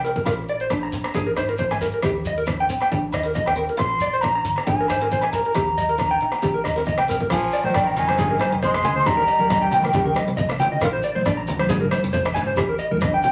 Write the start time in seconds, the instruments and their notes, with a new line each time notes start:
Already playing: fingered electric bass C2
0.04 steel-string acoustic guitar C4, clean electric guitar A#4, closed hi-hat
0.16 clean electric guitar A#4, kick, closed hi-hat, shekere
0.26 fingered electric bass A#1, steel-string acoustic guitar F4, clean electric guitar A#4, kick, cross-stick, closed hi-hat, low agogo, shekere
0.49 clean electric guitar D5, closed hi-hat
0.60 clean electric guitar C5, closed hi-hat
0.70 steel-string acoustic guitar D4, kick, cross-stick, closed hi-hat, low agogo, shekere
0.83 clean electric guitar A#5
0.92 fingered electric bass A#1, steel-string acoustic guitar C4, closed hi-hat, shekere
1.04 clean electric guitar A#5, cross-stick, closed hi-hat, low agogo
1.14 fingered electric bass G#1, steel-string acoustic guitar D4, clean electric guitar G#4, kick, closed hi-hat, shekere
1.27 clean electric guitar A#4
1.37 fingered electric bass G#1, steel-string acoustic guitar D#4, clean electric guitar C5, cross-stick, closed hi-hat, low agogo, shekere
1.49 clean electric guitar A#4, closed hi-hat
1.58 clean electric guitar C5, kick, closed hi-hat, shekere
1.70 fingered electric bass G#1, steel-string acoustic guitar G#3, clean electric guitar G#5, cross-stick, low agogo
1.81 steel-string acoustic guitar A#3, clean electric guitar A#4, closed hi-hat, shekere
1.92 clean electric guitar A#4, closed hi-hat
2.02 fingered electric bass D#2, steel-string acoustic guitar D#4, clean electric guitar G4, kick, cross-stick, closed hi-hat, low agogo, shekere
2.25 clean electric guitar D#5, closed hi-hat, shekere
2.38 clean electric guitar A#4, closed hi-hat
2.46 steel-string acoustic guitar D4, kick, cross-stick, closed hi-hat, low agogo, shekere
2.60 clean electric guitar G5
2.69 fingered electric bass A#1, steel-string acoustic guitar C4, closed hi-hat, shekere
2.81 clean electric guitar G5, cross-stick, closed hi-hat, low agogo
2.91 fingered electric bass D#3, steel-string acoustic guitar D4, muted clean electric guitar stroke, kick, closed hi-hat, shekere
3.12 fingered electric bass D#2, steel-string acoustic guitar D#4, clean electric guitar D#5, cross-stick, closed hi-hat, low agogo, shekere
3.23 steel-string acoustic guitar C4, clean electric guitar A#4, closed hi-hat
3.35 clean electric guitar D#5, kick, closed hi-hat, shekere
3.46 fingered electric bass D#2, steel-string acoustic guitar D#4, clean electric guitar G5, cross-stick, low agogo
3.56 steel-string acoustic guitar C4, clean electric guitar A#4, closed hi-hat
3.69 clean electric guitar A#4, closed hi-hat
3.77 fingered electric bass A#1, steel-string acoustic guitar F4, flute C6, muted clean electric guitar stroke, kick, cross-stick, closed hi-hat, low agogo, shekere
3.99 clean electric guitar D5, closed hi-hat, shekere
4.13 clean electric guitar C5, closed hi-hat
4.21 steel-string acoustic guitar D4, flute A#5, kick, cross-stick, closed hi-hat, low agogo, shekere
4.35 clean electric guitar A#5
4.45 fingered electric bass G1, steel-string acoustic guitar C4, closed hi-hat, shekere
4.56 clean electric guitar A#5, cross-stick, closed hi-hat, low agogo
4.66 fingered electric bass G#1, steel-string acoustic guitar D4, flute G#5, muted clean electric guitar stroke, kick, closed hi-hat, shekere
4.81 clean electric guitar A#4
4.88 fingered electric bass G#1, steel-string acoustic guitar D#4, clean electric guitar C5, cross-stick, closed hi-hat, low agogo, shekere
5.01 steel-string acoustic guitar C4, clean electric guitar A#4, closed hi-hat
5.11 clean electric guitar C5, kick, closed hi-hat, shekere
5.21 fingered electric bass A#1, steel-string acoustic guitar G#3, clean electric guitar G#5, cross-stick, low agogo
5.31 steel-string acoustic guitar A#3, clean electric guitar A#4, flute A#5, closed hi-hat, shekere
5.45 clean electric guitar A#4, closed hi-hat
5.54 fingered electric bass D#2, steel-string acoustic guitar D#4, clean electric guitar G4, kick, cross-stick, closed hi-hat, low agogo, shekere
5.78 clean electric guitar D#5, closed hi-hat, shekere
5.89 clean electric guitar A#4, closed hi-hat
5.98 steel-string acoustic guitar D4, kick, cross-stick, closed hi-hat, low agogo, shekere
6.11 clean electric guitar G5
6.21 fingered electric bass A#1, steel-string acoustic guitar D#4, closed hi-hat
6.32 muted clean electric guitar stroke, cross-stick, closed hi-hat, low agogo, shekere
6.42 fingered electric bass D#3, steel-string acoustic guitar D4, clean electric guitar G4, kick, closed hi-hat, shekere
6.54 clean electric guitar A#4
6.64 fingered electric bass D#2, steel-string acoustic guitar D#4, clean electric guitar D#5, cross-stick, closed hi-hat, low agogo, shekere
6.76 steel-string acoustic guitar C4, clean electric guitar A#4, closed hi-hat, shekere
6.86 clean electric guitar D#5, kick, closed hi-hat, shekere
6.98 fingered electric bass C2, steel-string acoustic guitar A#3, clean electric guitar G5, cross-stick, low agogo
7.08 steel-string acoustic guitar C4, clean electric guitar A#4, closed hi-hat, shekere
7.20 clean electric guitar A#4, kick, closed hi-hat
7.30 fingered electric bass A#1, tenor saxophone F3, steel-string acoustic guitar F4, flute G#5, muted clean electric guitar stroke, kick, cross-stick, crash, low agogo, shekere
7.52 clean electric guitar D5, closed hi-hat, shekere
7.64 fingered electric bass A#1, tenor saxophone D#3, clean electric guitar C5, flute G5, high conga
7.74 steel-string acoustic guitar D4, clean electric guitar D5, kick, cross-stick, low agogo, shekere
7.87 clean electric guitar A#5
7.96 fingered electric bass F2, tenor saxophone D#3, flute G#5, clean electric guitar A#5, muted steel-string acoustic guitar stroke, closed hi-hat, low conga, shekere
8.07 clean electric guitar C5, cross-stick, high conga, low agogo
8.18 fingered electric bass G#1, steel-string acoustic guitar D4, clean electric guitar G#4, kick, low conga, shekere
8.30 clean electric guitar A#4
8.38 steel-string acoustic guitar D#4, clean electric guitar C5, cross-stick, closed hi-hat, high conga, low agogo, shekere
8.52 fingered electric bass F1, steel-string acoustic guitar C4
8.62 tenor saxophone G#3, clean electric guitar C5, flute C6, kick, shekere
8.74 steel-string acoustic guitar G#3, cross-stick, low agogo
8.83 fingered electric bass D2, steel-string acoustic guitar A#3, clean electric guitar G#5, closed hi-hat, low conga, shekere
8.96 clean electric guitar C5
9.06 fingered electric bass D#2, tenor saxophone G3, steel-string acoustic guitar D#4, flute A#5, muted clean electric guitar stroke, kick, cross-stick, low agogo, shekere
9.17 clean electric guitar A#4
9.27 clean electric guitar D#5, closed hi-hat, shekere
9.39 fingered electric bass D#2, clean electric guitar A#4, high conga
9.50 steel-string acoustic guitar D4, clean electric guitar D#5, kick, cross-stick, low agogo, shekere
9.62 clean electric guitar G5
9.71 fingered electric bass A#1, tenor saxophone D#3, steel-string acoustic guitar C4, clean electric guitar G5, flute G5, closed hi-hat, low conga, shekere
9.83 clean electric guitar A#4, cross-stick, high conga, low agogo
9.93 fingered electric bass D#2, steel-string acoustic guitar D4, clean electric guitar G4, kick, low conga, shekere
10.06 clean electric guitar A#4
10.15 steel-string acoustic guitar D#4, clean electric guitar D#5, cross-stick, closed hi-hat, high conga, low agogo, shekere
10.28 fingered electric bass C2, steel-string acoustic guitar C4
10.37 clean electric guitar D#5, kick, shekere
10.49 steel-string acoustic guitar A#3, cross-stick, low agogo
10.59 fingered electric bass D#3, steel-string acoustic guitar C4, clean electric guitar G5, closed hi-hat, low conga, shekere
10.72 clean electric guitar D#5
10.81 fingered electric bass A#1, steel-string acoustic guitar F4, clean electric guitar A#4, kick, cross-stick, low agogo, shekere
10.93 clean electric guitar C5
11.03 clean electric guitar D5, closed hi-hat, shekere
11.15 fingered electric bass A#1, clean electric guitar C5, high conga
11.25 steel-string acoustic guitar D4, clean electric guitar D5, kick, cross-stick, low agogo, shekere
11.37 clean electric guitar A#5
11.47 fingered electric bass D#2, steel-string acoustic guitar C4, clean electric guitar A#5, closed hi-hat, low conga, shekere
11.59 clean electric guitar C5, cross-stick, high conga, low agogo
11.69 fingered electric bass G#1, steel-string acoustic guitar D4, clean electric guitar G#4, kick, low conga, shekere
11.81 clean electric guitar A#4
11.91 steel-string acoustic guitar D#4, clean electric guitar C5, cross-stick, closed hi-hat, high conga, low agogo, shekere
12.04 fingered electric bass F1, steel-string acoustic guitar C4
12.13 clean electric guitar C5, kick, shekere
12.25 steel-string acoustic guitar G#3, cross-stick, low agogo
12.34 fingered electric bass G#2, steel-string acoustic guitar A#3, clean electric guitar G#5, closed hi-hat, low conga, shekere
12.47 clean electric guitar C5
12.56 fingered electric bass D#2, steel-string acoustic guitar D#4, clean electric guitar G4, kick, cross-stick, low agogo, shekere
12.69 clean electric guitar A#4
12.78 clean electric guitar D#5, closed hi-hat, shekere
12.91 fingered electric bass D#2, clean electric guitar A#4, high conga
13.01 steel-string acoustic guitar D4, clean electric guitar D#5, kick, cross-stick, low agogo, shekere
13.14 clean electric guitar G5
13.23 fingered electric bass A#1, steel-string acoustic guitar C4, clean electric guitar G5, closed hi-hat, low conga, shekere